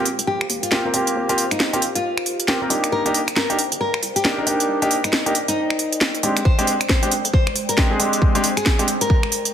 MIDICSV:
0, 0, Header, 1, 6, 480
1, 0, Start_track
1, 0, Tempo, 441176
1, 1260, Time_signature, 4, 2, 24, 8
1, 10376, End_track
2, 0, Start_track
2, 0, Title_t, "Ambient pad"
2, 0, Program_c, 0, 92
2, 0, Note_on_c, 0, 67, 85
2, 0, Note_on_c, 0, 70, 73
2, 0, Note_on_c, 0, 72, 77
2, 0, Note_on_c, 0, 77, 92
2, 2905, Note_off_c, 0, 67, 0
2, 2905, Note_off_c, 0, 72, 0
2, 2905, Note_off_c, 0, 77, 0
2, 2941, Note_on_c, 0, 72, 76
2, 2941, Note_on_c, 0, 74, 76
2, 2941, Note_on_c, 0, 79, 90
2, 6738, Note_off_c, 0, 70, 0
2, 6742, Note_off_c, 0, 72, 0
2, 6778, Note_on_c, 0, 56, 85
2, 6778, Note_on_c, 0, 72, 78
2, 10376, Note_off_c, 0, 56, 0
2, 10376, Note_off_c, 0, 72, 0
2, 10376, Note_off_c, 0, 74, 0
2, 10376, Note_off_c, 0, 79, 0
2, 10376, End_track
3, 0, Start_track
3, 0, Title_t, "Nylon-string guitar"
3, 0, Program_c, 1, 24
3, 297, Note_on_c, 1, 67, 91
3, 502, Note_off_c, 1, 67, 0
3, 683, Note_on_c, 1, 65, 93
3, 938, Note_off_c, 1, 65, 0
3, 1647, Note_on_c, 1, 63, 83
3, 1901, Note_off_c, 1, 63, 0
3, 2127, Note_on_c, 1, 65, 90
3, 3105, Note_off_c, 1, 65, 0
3, 3180, Note_on_c, 1, 70, 96
3, 3442, Note_off_c, 1, 70, 0
3, 3659, Note_on_c, 1, 70, 93
3, 3921, Note_off_c, 1, 70, 0
3, 4141, Note_on_c, 1, 70, 91
3, 4344, Note_off_c, 1, 70, 0
3, 4525, Note_on_c, 1, 67, 91
3, 4779, Note_off_c, 1, 67, 0
3, 5486, Note_on_c, 1, 63, 88
3, 5740, Note_off_c, 1, 63, 0
3, 5966, Note_on_c, 1, 63, 93
3, 6945, Note_off_c, 1, 63, 0
3, 7018, Note_on_c, 1, 72, 94
3, 7281, Note_off_c, 1, 72, 0
3, 7501, Note_on_c, 1, 72, 92
3, 7762, Note_off_c, 1, 72, 0
3, 7981, Note_on_c, 1, 72, 89
3, 8184, Note_off_c, 1, 72, 0
3, 8366, Note_on_c, 1, 70, 96
3, 8620, Note_off_c, 1, 70, 0
3, 9324, Note_on_c, 1, 68, 91
3, 9579, Note_off_c, 1, 68, 0
3, 9805, Note_on_c, 1, 70, 97
3, 10376, Note_off_c, 1, 70, 0
3, 10376, End_track
4, 0, Start_track
4, 0, Title_t, "Grand piano"
4, 0, Program_c, 2, 0
4, 781, Note_on_c, 2, 58, 83
4, 781, Note_on_c, 2, 60, 73
4, 781, Note_on_c, 2, 65, 75
4, 781, Note_on_c, 2, 67, 89
4, 904, Note_off_c, 2, 60, 0
4, 905, Note_off_c, 2, 58, 0
4, 905, Note_off_c, 2, 65, 0
4, 905, Note_off_c, 2, 67, 0
4, 926, Note_on_c, 2, 58, 73
4, 926, Note_on_c, 2, 60, 68
4, 926, Note_on_c, 2, 70, 82
4, 927, Note_on_c, 2, 65, 70
4, 1002, Note_off_c, 2, 58, 0
4, 1002, Note_off_c, 2, 60, 0
4, 1002, Note_off_c, 2, 65, 0
4, 1002, Note_off_c, 2, 70, 0
4, 1021, Note_on_c, 2, 60, 69
4, 1021, Note_on_c, 2, 67, 87
4, 1022, Note_on_c, 2, 58, 78
4, 1022, Note_on_c, 2, 65, 71
4, 1372, Note_off_c, 2, 58, 0
4, 1372, Note_off_c, 2, 60, 0
4, 1372, Note_off_c, 2, 65, 0
4, 1372, Note_off_c, 2, 67, 0
4, 1406, Note_on_c, 2, 58, 95
4, 1406, Note_on_c, 2, 65, 87
4, 1406, Note_on_c, 2, 67, 98
4, 1407, Note_on_c, 2, 60, 85
4, 1543, Note_off_c, 2, 58, 0
4, 1543, Note_off_c, 2, 65, 0
4, 1543, Note_off_c, 2, 67, 0
4, 1544, Note_off_c, 2, 60, 0
4, 1885, Note_on_c, 2, 67, 100
4, 1886, Note_on_c, 2, 58, 85
4, 1886, Note_on_c, 2, 60, 79
4, 1886, Note_on_c, 2, 65, 80
4, 1962, Note_off_c, 2, 58, 0
4, 1962, Note_off_c, 2, 60, 0
4, 1962, Note_off_c, 2, 65, 0
4, 1962, Note_off_c, 2, 67, 0
4, 2699, Note_on_c, 2, 60, 80
4, 2699, Note_on_c, 2, 65, 74
4, 2699, Note_on_c, 2, 67, 86
4, 2700, Note_on_c, 2, 58, 81
4, 2823, Note_off_c, 2, 67, 0
4, 2824, Note_off_c, 2, 58, 0
4, 2824, Note_off_c, 2, 60, 0
4, 2824, Note_off_c, 2, 65, 0
4, 2844, Note_on_c, 2, 65, 70
4, 2845, Note_on_c, 2, 58, 75
4, 2845, Note_on_c, 2, 60, 74
4, 2845, Note_on_c, 2, 70, 85
4, 2922, Note_off_c, 2, 58, 0
4, 2922, Note_off_c, 2, 60, 0
4, 2922, Note_off_c, 2, 65, 0
4, 2922, Note_off_c, 2, 70, 0
4, 2938, Note_on_c, 2, 62, 73
4, 2938, Note_on_c, 2, 63, 76
4, 2939, Note_on_c, 2, 58, 79
4, 2939, Note_on_c, 2, 67, 90
4, 3290, Note_off_c, 2, 58, 0
4, 3290, Note_off_c, 2, 62, 0
4, 3290, Note_off_c, 2, 63, 0
4, 3290, Note_off_c, 2, 67, 0
4, 3325, Note_on_c, 2, 58, 94
4, 3325, Note_on_c, 2, 63, 88
4, 3325, Note_on_c, 2, 67, 102
4, 3326, Note_on_c, 2, 62, 84
4, 3463, Note_off_c, 2, 58, 0
4, 3463, Note_off_c, 2, 62, 0
4, 3463, Note_off_c, 2, 63, 0
4, 3463, Note_off_c, 2, 67, 0
4, 3804, Note_on_c, 2, 62, 80
4, 3804, Note_on_c, 2, 63, 79
4, 3804, Note_on_c, 2, 67, 98
4, 3805, Note_on_c, 2, 58, 88
4, 3881, Note_off_c, 2, 62, 0
4, 3881, Note_off_c, 2, 63, 0
4, 3881, Note_off_c, 2, 67, 0
4, 3882, Note_off_c, 2, 58, 0
4, 4618, Note_on_c, 2, 58, 85
4, 4619, Note_on_c, 2, 62, 80
4, 4619, Note_on_c, 2, 63, 74
4, 4619, Note_on_c, 2, 67, 94
4, 4743, Note_off_c, 2, 58, 0
4, 4743, Note_off_c, 2, 63, 0
4, 4744, Note_off_c, 2, 62, 0
4, 4744, Note_off_c, 2, 67, 0
4, 4764, Note_on_c, 2, 58, 79
4, 4764, Note_on_c, 2, 62, 71
4, 4764, Note_on_c, 2, 63, 72
4, 4764, Note_on_c, 2, 70, 89
4, 4841, Note_off_c, 2, 58, 0
4, 4841, Note_off_c, 2, 62, 0
4, 4841, Note_off_c, 2, 63, 0
4, 4841, Note_off_c, 2, 70, 0
4, 4859, Note_on_c, 2, 58, 82
4, 4859, Note_on_c, 2, 62, 75
4, 4859, Note_on_c, 2, 63, 75
4, 4860, Note_on_c, 2, 67, 91
4, 5210, Note_off_c, 2, 62, 0
4, 5211, Note_off_c, 2, 58, 0
4, 5211, Note_off_c, 2, 63, 0
4, 5211, Note_off_c, 2, 67, 0
4, 5245, Note_on_c, 2, 58, 89
4, 5245, Note_on_c, 2, 62, 87
4, 5245, Note_on_c, 2, 63, 86
4, 5245, Note_on_c, 2, 67, 105
4, 5382, Note_off_c, 2, 62, 0
4, 5382, Note_off_c, 2, 67, 0
4, 5383, Note_off_c, 2, 58, 0
4, 5383, Note_off_c, 2, 63, 0
4, 5724, Note_on_c, 2, 58, 86
4, 5724, Note_on_c, 2, 62, 79
4, 5724, Note_on_c, 2, 63, 84
4, 5724, Note_on_c, 2, 67, 94
4, 5801, Note_off_c, 2, 58, 0
4, 5801, Note_off_c, 2, 62, 0
4, 5801, Note_off_c, 2, 63, 0
4, 5801, Note_off_c, 2, 67, 0
4, 6780, Note_on_c, 2, 62, 68
4, 6781, Note_on_c, 2, 56, 69
4, 6781, Note_on_c, 2, 60, 69
4, 6781, Note_on_c, 2, 67, 83
4, 6954, Note_off_c, 2, 56, 0
4, 6954, Note_off_c, 2, 60, 0
4, 6954, Note_off_c, 2, 62, 0
4, 6954, Note_off_c, 2, 67, 0
4, 7165, Note_on_c, 2, 56, 96
4, 7165, Note_on_c, 2, 60, 85
4, 7165, Note_on_c, 2, 62, 82
4, 7165, Note_on_c, 2, 67, 101
4, 7303, Note_off_c, 2, 56, 0
4, 7303, Note_off_c, 2, 60, 0
4, 7303, Note_off_c, 2, 62, 0
4, 7303, Note_off_c, 2, 67, 0
4, 7645, Note_on_c, 2, 60, 80
4, 7645, Note_on_c, 2, 62, 81
4, 7646, Note_on_c, 2, 56, 85
4, 7646, Note_on_c, 2, 67, 97
4, 7722, Note_off_c, 2, 56, 0
4, 7722, Note_off_c, 2, 60, 0
4, 7722, Note_off_c, 2, 62, 0
4, 7722, Note_off_c, 2, 67, 0
4, 8459, Note_on_c, 2, 56, 86
4, 8460, Note_on_c, 2, 60, 78
4, 8460, Note_on_c, 2, 62, 78
4, 8460, Note_on_c, 2, 67, 98
4, 8584, Note_off_c, 2, 56, 0
4, 8584, Note_off_c, 2, 60, 0
4, 8584, Note_off_c, 2, 62, 0
4, 8584, Note_off_c, 2, 67, 0
4, 8605, Note_on_c, 2, 56, 77
4, 8605, Note_on_c, 2, 60, 73
4, 8605, Note_on_c, 2, 62, 73
4, 8605, Note_on_c, 2, 68, 88
4, 8682, Note_off_c, 2, 56, 0
4, 8682, Note_off_c, 2, 60, 0
4, 8682, Note_off_c, 2, 62, 0
4, 8682, Note_off_c, 2, 68, 0
4, 8699, Note_on_c, 2, 56, 80
4, 8699, Note_on_c, 2, 60, 77
4, 8699, Note_on_c, 2, 62, 74
4, 8699, Note_on_c, 2, 67, 91
4, 9050, Note_off_c, 2, 67, 0
4, 9051, Note_off_c, 2, 56, 0
4, 9051, Note_off_c, 2, 60, 0
4, 9051, Note_off_c, 2, 62, 0
4, 9085, Note_on_c, 2, 56, 98
4, 9085, Note_on_c, 2, 60, 87
4, 9085, Note_on_c, 2, 62, 87
4, 9086, Note_on_c, 2, 67, 106
4, 9223, Note_off_c, 2, 56, 0
4, 9223, Note_off_c, 2, 60, 0
4, 9223, Note_off_c, 2, 62, 0
4, 9223, Note_off_c, 2, 67, 0
4, 9565, Note_on_c, 2, 56, 90
4, 9565, Note_on_c, 2, 60, 83
4, 9565, Note_on_c, 2, 62, 81
4, 9565, Note_on_c, 2, 67, 100
4, 9642, Note_off_c, 2, 56, 0
4, 9642, Note_off_c, 2, 60, 0
4, 9642, Note_off_c, 2, 62, 0
4, 9642, Note_off_c, 2, 67, 0
4, 10376, End_track
5, 0, Start_track
5, 0, Title_t, "FM bass"
5, 0, Program_c, 3, 39
5, 0, Note_on_c, 3, 34, 93
5, 137, Note_off_c, 3, 34, 0
5, 206, Note_on_c, 3, 27, 93
5, 273, Note_off_c, 3, 27, 0
5, 301, Note_on_c, 3, 34, 81
5, 485, Note_off_c, 3, 34, 0
5, 542, Note_on_c, 3, 39, 98
5, 644, Note_off_c, 3, 39, 0
5, 1262, Note_on_c, 3, 39, 105
5, 1647, Note_on_c, 3, 34, 94
5, 1663, Note_off_c, 3, 39, 0
5, 2058, Note_off_c, 3, 34, 0
5, 2127, Note_on_c, 3, 27, 96
5, 2193, Note_off_c, 3, 27, 0
5, 2940, Note_on_c, 3, 36, 87
5, 3043, Note_off_c, 3, 36, 0
5, 3181, Note_on_c, 3, 36, 104
5, 3565, Note_on_c, 3, 31, 93
5, 3582, Note_off_c, 3, 36, 0
5, 3977, Note_off_c, 3, 31, 0
5, 4046, Note_on_c, 3, 31, 98
5, 4113, Note_off_c, 3, 31, 0
5, 4140, Note_on_c, 3, 31, 83
5, 4324, Note_off_c, 3, 31, 0
5, 4381, Note_on_c, 3, 36, 97
5, 4483, Note_off_c, 3, 36, 0
5, 5100, Note_on_c, 3, 36, 101
5, 5486, Note_on_c, 3, 31, 96
5, 5502, Note_off_c, 3, 36, 0
5, 5897, Note_off_c, 3, 31, 0
5, 5966, Note_on_c, 3, 31, 93
5, 6033, Note_off_c, 3, 31, 0
5, 6780, Note_on_c, 3, 29, 90
5, 6883, Note_off_c, 3, 29, 0
5, 7406, Note_on_c, 3, 36, 94
5, 7818, Note_off_c, 3, 36, 0
5, 7886, Note_on_c, 3, 41, 100
5, 7953, Note_off_c, 3, 41, 0
5, 7981, Note_on_c, 3, 36, 85
5, 8165, Note_off_c, 3, 36, 0
5, 8220, Note_on_c, 3, 29, 104
5, 8323, Note_off_c, 3, 29, 0
5, 9805, Note_on_c, 3, 41, 96
5, 9872, Note_off_c, 3, 41, 0
5, 10376, End_track
6, 0, Start_track
6, 0, Title_t, "Drums"
6, 60, Note_on_c, 9, 46, 106
6, 169, Note_off_c, 9, 46, 0
6, 206, Note_on_c, 9, 42, 61
6, 314, Note_off_c, 9, 42, 0
6, 447, Note_on_c, 9, 26, 70
6, 540, Note_on_c, 9, 46, 106
6, 556, Note_off_c, 9, 26, 0
6, 649, Note_off_c, 9, 46, 0
6, 687, Note_on_c, 9, 42, 62
6, 779, Note_on_c, 9, 38, 113
6, 795, Note_off_c, 9, 42, 0
6, 888, Note_off_c, 9, 38, 0
6, 1020, Note_on_c, 9, 46, 112
6, 1129, Note_off_c, 9, 46, 0
6, 1166, Note_on_c, 9, 42, 64
6, 1275, Note_off_c, 9, 42, 0
6, 1407, Note_on_c, 9, 42, 50
6, 1500, Note_on_c, 9, 46, 101
6, 1516, Note_off_c, 9, 42, 0
6, 1609, Note_off_c, 9, 46, 0
6, 1647, Note_on_c, 9, 26, 68
6, 1647, Note_on_c, 9, 42, 60
6, 1741, Note_on_c, 9, 38, 127
6, 1755, Note_off_c, 9, 26, 0
6, 1755, Note_off_c, 9, 42, 0
6, 1849, Note_off_c, 9, 38, 0
6, 1887, Note_on_c, 9, 42, 50
6, 1981, Note_on_c, 9, 46, 106
6, 1996, Note_off_c, 9, 42, 0
6, 2089, Note_off_c, 9, 46, 0
6, 2127, Note_on_c, 9, 42, 64
6, 2236, Note_off_c, 9, 42, 0
6, 2367, Note_on_c, 9, 26, 74
6, 2460, Note_on_c, 9, 46, 101
6, 2475, Note_off_c, 9, 26, 0
6, 2569, Note_off_c, 9, 46, 0
6, 2607, Note_on_c, 9, 42, 64
6, 2701, Note_on_c, 9, 38, 116
6, 2716, Note_off_c, 9, 42, 0
6, 2809, Note_off_c, 9, 38, 0
6, 2940, Note_on_c, 9, 46, 115
6, 3049, Note_off_c, 9, 46, 0
6, 3087, Note_on_c, 9, 26, 55
6, 3087, Note_on_c, 9, 42, 60
6, 3196, Note_off_c, 9, 26, 0
6, 3196, Note_off_c, 9, 42, 0
6, 3327, Note_on_c, 9, 42, 46
6, 3421, Note_on_c, 9, 46, 100
6, 3436, Note_off_c, 9, 42, 0
6, 3530, Note_off_c, 9, 46, 0
6, 3567, Note_on_c, 9, 26, 68
6, 3567, Note_on_c, 9, 42, 59
6, 3660, Note_on_c, 9, 38, 127
6, 3676, Note_off_c, 9, 26, 0
6, 3676, Note_off_c, 9, 42, 0
6, 3769, Note_off_c, 9, 38, 0
6, 3808, Note_on_c, 9, 42, 50
6, 3902, Note_on_c, 9, 46, 108
6, 3916, Note_off_c, 9, 42, 0
6, 4010, Note_off_c, 9, 46, 0
6, 4047, Note_on_c, 9, 42, 63
6, 4156, Note_off_c, 9, 42, 0
6, 4287, Note_on_c, 9, 26, 70
6, 4381, Note_on_c, 9, 46, 102
6, 4396, Note_off_c, 9, 26, 0
6, 4489, Note_off_c, 9, 46, 0
6, 4527, Note_on_c, 9, 42, 66
6, 4621, Note_on_c, 9, 38, 116
6, 4636, Note_off_c, 9, 42, 0
6, 4730, Note_off_c, 9, 38, 0
6, 4861, Note_on_c, 9, 46, 102
6, 4970, Note_off_c, 9, 46, 0
6, 5007, Note_on_c, 9, 42, 59
6, 5115, Note_off_c, 9, 42, 0
6, 5246, Note_on_c, 9, 42, 50
6, 5339, Note_on_c, 9, 46, 96
6, 5355, Note_off_c, 9, 42, 0
6, 5448, Note_off_c, 9, 46, 0
6, 5486, Note_on_c, 9, 26, 64
6, 5486, Note_on_c, 9, 42, 62
6, 5579, Note_on_c, 9, 38, 127
6, 5594, Note_off_c, 9, 26, 0
6, 5594, Note_off_c, 9, 42, 0
6, 5688, Note_off_c, 9, 38, 0
6, 5727, Note_on_c, 9, 42, 54
6, 5820, Note_on_c, 9, 46, 105
6, 5835, Note_off_c, 9, 42, 0
6, 5929, Note_off_c, 9, 46, 0
6, 5966, Note_on_c, 9, 42, 60
6, 6075, Note_off_c, 9, 42, 0
6, 6206, Note_on_c, 9, 26, 66
6, 6300, Note_on_c, 9, 46, 97
6, 6315, Note_off_c, 9, 26, 0
6, 6409, Note_off_c, 9, 46, 0
6, 6447, Note_on_c, 9, 42, 67
6, 6540, Note_on_c, 9, 38, 122
6, 6555, Note_off_c, 9, 42, 0
6, 6649, Note_off_c, 9, 38, 0
6, 6686, Note_on_c, 9, 42, 34
6, 6781, Note_on_c, 9, 46, 105
6, 6795, Note_off_c, 9, 42, 0
6, 6889, Note_off_c, 9, 46, 0
6, 6926, Note_on_c, 9, 26, 52
6, 6926, Note_on_c, 9, 42, 61
6, 7021, Note_on_c, 9, 36, 119
6, 7035, Note_off_c, 9, 26, 0
6, 7035, Note_off_c, 9, 42, 0
6, 7129, Note_off_c, 9, 36, 0
6, 7167, Note_on_c, 9, 42, 50
6, 7261, Note_on_c, 9, 46, 98
6, 7276, Note_off_c, 9, 42, 0
6, 7370, Note_off_c, 9, 46, 0
6, 7407, Note_on_c, 9, 26, 66
6, 7407, Note_on_c, 9, 42, 66
6, 7501, Note_on_c, 9, 36, 118
6, 7501, Note_on_c, 9, 38, 123
6, 7515, Note_off_c, 9, 26, 0
6, 7515, Note_off_c, 9, 42, 0
6, 7609, Note_off_c, 9, 36, 0
6, 7610, Note_off_c, 9, 38, 0
6, 7646, Note_on_c, 9, 42, 53
6, 7741, Note_on_c, 9, 46, 105
6, 7755, Note_off_c, 9, 42, 0
6, 7850, Note_off_c, 9, 46, 0
6, 7887, Note_on_c, 9, 42, 67
6, 7981, Note_on_c, 9, 36, 120
6, 7996, Note_off_c, 9, 42, 0
6, 8090, Note_off_c, 9, 36, 0
6, 8127, Note_on_c, 9, 26, 68
6, 8221, Note_on_c, 9, 46, 98
6, 8236, Note_off_c, 9, 26, 0
6, 8330, Note_off_c, 9, 46, 0
6, 8366, Note_on_c, 9, 42, 64
6, 8461, Note_on_c, 9, 36, 120
6, 8461, Note_on_c, 9, 38, 113
6, 8475, Note_off_c, 9, 42, 0
6, 8569, Note_off_c, 9, 36, 0
6, 8569, Note_off_c, 9, 38, 0
6, 8700, Note_on_c, 9, 46, 108
6, 8809, Note_off_c, 9, 46, 0
6, 8847, Note_on_c, 9, 42, 65
6, 8941, Note_on_c, 9, 36, 117
6, 8955, Note_off_c, 9, 42, 0
6, 9049, Note_off_c, 9, 36, 0
6, 9087, Note_on_c, 9, 42, 52
6, 9180, Note_on_c, 9, 46, 103
6, 9195, Note_off_c, 9, 42, 0
6, 9289, Note_off_c, 9, 46, 0
6, 9326, Note_on_c, 9, 26, 63
6, 9326, Note_on_c, 9, 42, 69
6, 9420, Note_on_c, 9, 36, 112
6, 9420, Note_on_c, 9, 38, 124
6, 9435, Note_off_c, 9, 26, 0
6, 9435, Note_off_c, 9, 42, 0
6, 9529, Note_off_c, 9, 36, 0
6, 9529, Note_off_c, 9, 38, 0
6, 9566, Note_on_c, 9, 42, 55
6, 9659, Note_on_c, 9, 46, 109
6, 9675, Note_off_c, 9, 42, 0
6, 9768, Note_off_c, 9, 46, 0
6, 9805, Note_on_c, 9, 42, 72
6, 9900, Note_on_c, 9, 36, 117
6, 9914, Note_off_c, 9, 42, 0
6, 10009, Note_off_c, 9, 36, 0
6, 10045, Note_on_c, 9, 26, 64
6, 10140, Note_on_c, 9, 46, 108
6, 10154, Note_off_c, 9, 26, 0
6, 10248, Note_off_c, 9, 46, 0
6, 10285, Note_on_c, 9, 42, 70
6, 10376, Note_off_c, 9, 42, 0
6, 10376, End_track
0, 0, End_of_file